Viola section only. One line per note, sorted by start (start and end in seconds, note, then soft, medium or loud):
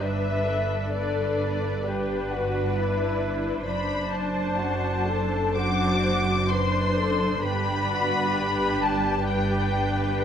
0.03 0.94 D4 soft
0.03 0.93 B4 soft
0.94 1.85 D4 soft
0.94 1.84 B4 soft
1.85 3.64 D4 soft
1.85 3.64 B4 soft
3.66 5.53 D4 soft
3.66 5.53 C5 soft
5.56 6.48 D4 soft
5.56 6.48 C5 soft
6.49 7.41 D4 soft
6.49 7.41 C5 soft
7.43 9.25 D4 medium
7.43 9.27 B4 medium
9.28 10.24 D4 soft
9.28 10.24 B4 soft